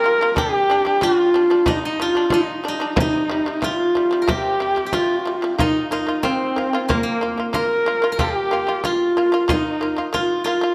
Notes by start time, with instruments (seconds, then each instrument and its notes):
Already playing: guzheng A#3 C4 F4 G4 A#4, horsehead fiddle A#4
0.04 shamisen A#3 F4
0.21 shamisen A#3 F4
0.36 shamisen G3 D4, horsehead fiddle G4, guzheng G4, frame drum
0.70 shamisen G3 D4
0.85 shamisen G3 D4, frame drum
1.01 shamisen G3 D4, guzheng F4, horsehead fiddle F4, frame drum
1.34 shamisen G3 D4, frame drum
1.50 shamisen G3 D4
1.66 shamisen G3 D4, guzheng D#4, horsehead fiddle D#4, frame drum
1.84 horsehead fiddle D#4, guzheng D#4
2.00 shamisen G3 D4, horsehead fiddle F4, guzheng F4
2.15 shamisen G3 D4, frame drum
2.30 shamisen G3 D4, horsehead fiddle D#4, guzheng D#4, frame drum
2.64 shamisen G3 D4, horsehead fiddle D#4
2.68 guzheng D#4
2.80 shamisen G3 D4
2.96 shamisen C3 G3, horsehead fiddle D#4, frame drum
3.00 guzheng D#4
3.30 shamisen C3 G3
3.46 shamisen C3 G3, frame drum
3.62 shamisen C3 G3, horsehead fiddle F4, guzheng F4, frame drum
3.95 shamisen C3 G3, frame drum
4.11 shamisen C3 G3
4.22 guzheng A#4
4.28 shamisen C3 G3, guzheng G4, horsehead fiddle G4, frame drum
4.60 shamisen C3 G3
4.76 shamisen C3 G3, frame drum
4.86 guzheng G4
4.93 shamisen C3 G3, guzheng F4, horsehead fiddle F4, frame drum
5.25 shamisen C3 G3
5.42 shamisen C3 G3
5.59 shamisen A#3 F4, horsehead fiddle D#4, guzheng D#4, frame drum
5.91 shamisen A#3 F4, guzheng D#4, horsehead fiddle D#4
6.07 shamisen A#3 F4, frame drum
6.23 shamisen A#3 F4, guzheng C4, horsehead fiddle C4, frame drum
6.56 shamisen A#3 F4, frame drum
6.73 shamisen A#3 F4
6.89 guzheng A#3, shamisen A#3 F4, horsehead fiddle A#3, frame drum
7.03 guzheng A#3
7.09 horsehead fiddle A#3
7.21 shamisen A#3 F4
7.38 shamisen A#3 F4, frame drum
7.53 shamisen A#3 F4, guzheng A#4, horsehead fiddle A#4, frame drum
7.86 shamisen A#3 F4
8.02 shamisen A#3 F4
8.12 guzheng A#4
8.19 shamisen A#3 F4, guzheng G4, horsehead fiddle G4, frame drum
8.51 shamisen A#3 F4
8.67 shamisen A#3 F4, frame drum
8.84 shamisen A#3 F4, guzheng F4, horsehead fiddle F4, frame drum
9.17 shamisen A#3 F4, frame drum
9.32 shamisen A#3 F4
9.47 shamisen A#3 F4, guzheng D#4, horsehead fiddle F4, frame drum
9.52 horsehead fiddle D#4
9.69 horsehead fiddle D#4
9.81 shamisen A#3 F4
9.96 shamisen A#3 F4, frame drum
10.13 shamisen A#3 F4, guzheng F4, frame drum
10.17 horsehead fiddle F4
10.44 shamisen A#3 F4, guzheng F4
10.49 horsehead fiddle F4
10.61 shamisen A#3 F4